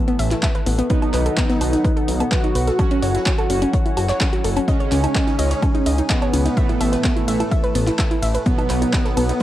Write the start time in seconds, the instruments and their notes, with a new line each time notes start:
Already playing: analog polysynth A2 E3 A3, analog synth pad E4 A4 B4 A5
0.08 synth arpeggio sound B3, closed hi-hat
0.19 analog synth bass A1, synth arpeggio sound E5, closed hi-hat, open hi-hat
0.31 synth arpeggio sound E4, snare, clap, closed hi-hat
0.43 synth arpeggio sound E5, kick, snare, clap, closed hi-hat, low woodblock
0.55 synth arpeggio sound B4, closed hi-hat
0.66 analog synth bass A1, synth arpeggio sound B3, open hi-hat
0.79 synth arpeggio sound B3, closed hi-hat
0.89 analog polysynth B2 F#3 B3, analog synth pad D#4 F#5, analog synth lead D#4, synth arpeggio sound B4, kick, closed hi-hat
1.02 synth arpeggio sound D#4, closed hi-hat, low woodblock
1.13 analog synth bass B1, synth arpeggio sound B4, clap, closed hi-hat, open hi-hat
1.26 synth arpeggio sound A4, closed hi-hat
1.37 synth arpeggio sound B3, kick, snare, clap, closed hi-hat
1.49 synth arpeggio sound B3, snare, closed hi-hat
1.61 analog synth bass B1, analog polysynth B2 F#3 B3, synth arpeggio sound B4, closed hi-hat, open hi-hat, low woodblock
1.73 synth arpeggio sound D#4, snare, closed hi-hat
1.84 synth arpeggio sound B4, kick, closed hi-hat
1.97 synth arpeggio sound A4, closed hi-hat
2.08 analog synth bass B1, synth arpeggio sound B3, closed hi-hat, open hi-hat
2.20 synth arpeggio sound B3, closed hi-hat, low woodblock
2.32 analog synth lead F#4, synth arpeggio sound B4, kick, snare, clap, closed hi-hat
2.44 synth arpeggio sound D#4, closed hi-hat
2.55 analog synth bass B1, synth arpeggio sound B4, closed hi-hat, open hi-hat
2.67 synth arpeggio sound A4, snare, closed hi-hat
2.79 analog polysynth F#3 C#4 F#4, synth arpeggio sound C#4, analog synth pad E4 C#5 F#5, kick, closed hi-hat, low woodblock
2.91 synth arpeggio sound C#4, closed hi-hat
3.02 analog synth bass F#1, synth arpeggio sound C#5, closed hi-hat, open hi-hat
3.15 synth arpeggio sound E4, snare, closed hi-hat
3.26 synth arpeggio sound C#5, kick, snare, clap, closed hi-hat
3.38 synth arpeggio sound A4, closed hi-hat, low woodblock
3.50 analog synth bass F#1, analog polysynth F#3 C#4 F#4, synth arpeggio sound C#4, closed hi-hat, open hi-hat
3.62 synth arpeggio sound C#4, closed hi-hat
3.73 synth arpeggio sound C#5, kick, closed hi-hat
3.86 synth arpeggio sound E4, closed hi-hat
3.97 analog synth bass F#1, synth arpeggio sound F#4, closed hi-hat, open hi-hat, low woodblock
4.09 synth arpeggio sound C#5, snare, clap, closed hi-hat
4.21 synth arpeggio sound C#4, kick, snare, clap, closed hi-hat
4.33 synth arpeggio sound F#4, closed hi-hat
4.44 analog synth bass F#1, synth arpeggio sound A4, open hi-hat
4.56 synth arpeggio sound C#4, closed hi-hat, low woodblock
4.68 analog polysynth C#3 G#3 C#4, analog synth lead C#4, analog synth pad D#4 G#4 G#5, synth arpeggio sound D#5, kick, closed hi-hat
4.80 synth arpeggio sound C#5, closed hi-hat
4.92 analog synth bass C#2, synth arpeggio sound C#4, clap, closed hi-hat, open hi-hat, ride
5.04 synth arpeggio sound D#4, closed hi-hat, low woodblock
5.15 synth arpeggio sound D#5, kick, snare, clap, closed hi-hat
5.27 synth arpeggio sound D#4, snare, closed hi-hat
5.39 analog synth bass C#2, analog polysynth C#3 G#3 C#4, synth arpeggio sound D#5, closed hi-hat, open hi-hat, ride
5.51 synth arpeggio sound C#5, snare, closed hi-hat
5.62 synth arpeggio sound C#4, kick, closed hi-hat, low woodblock
5.75 synth arpeggio sound D#4, closed hi-hat
5.86 analog synth bass C#2, synth arpeggio sound D#5, closed hi-hat, open hi-hat, ride
5.98 synth arpeggio sound D#4, closed hi-hat
6.10 analog synth lead B3, synth arpeggio sound D#5, kick, snare, clap, closed hi-hat
6.22 synth arpeggio sound C#5, closed hi-hat, low woodblock
6.33 analog synth bass C#2, synth arpeggio sound C#4, closed hi-hat, open hi-hat, ride
6.45 synth arpeggio sound D#4, snare, closed hi-hat
6.57 analog polysynth A2 E3 A3, analog synth pad E4 A4 B4 A5, synth arpeggio sound E5, kick, closed hi-hat
6.69 synth arpeggio sound E4, closed hi-hat
6.81 analog synth bass A1, synth arpeggio sound E5, closed hi-hat, open hi-hat, ride, low woodblock
6.93 synth arpeggio sound B4, snare, closed hi-hat
7.04 synth arpeggio sound B3, kick, snare, clap, closed hi-hat
7.16 synth arpeggio sound E4, closed hi-hat
7.28 analog synth bass A1, analog polysynth A2 E3 A3, synth arpeggio sound E5, closed hi-hat, open hi-hat, ride
7.40 synth arpeggio sound E4, closed hi-hat, low woodblock
7.51 synth arpeggio sound E5, kick, closed hi-hat
7.64 synth arpeggio sound B4, closed hi-hat
7.75 analog synth bass A1, synth arpeggio sound B3, closed hi-hat, open hi-hat, ride
7.87 synth arpeggio sound E4, snare, clap, closed hi-hat
7.99 synth arpeggio sound E5, kick, snare, clap, closed hi-hat, low woodblock
8.11 synth arpeggio sound E4, closed hi-hat
8.22 analog synth bass A1, synth arpeggio sound E5, open hi-hat, ride
8.34 synth arpeggio sound B4, closed hi-hat
8.46 analog polysynth B2 F#3 B3, synth arpeggio sound B3, analog synth lead B3, analog synth pad D#4 A4 B4 F#5, kick, closed hi-hat
8.58 synth arpeggio sound D#4, closed hi-hat, low woodblock
8.69 analog synth bass B1, synth arpeggio sound B4, clap, closed hi-hat, open hi-hat, ride
8.82 synth arpeggio sound D#4, closed hi-hat
8.93 synth arpeggio sound B4, kick, snare, clap, closed hi-hat
9.05 synth arpeggio sound A4, snare, closed hi-hat
9.17 analog synth bass B1, analog polysynth B2 F#3 B3, synth arpeggio sound B3, closed hi-hat, open hi-hat, ride, low woodblock
9.29 synth arpeggio sound D#4, snare, closed hi-hat
9.40 closed hi-hat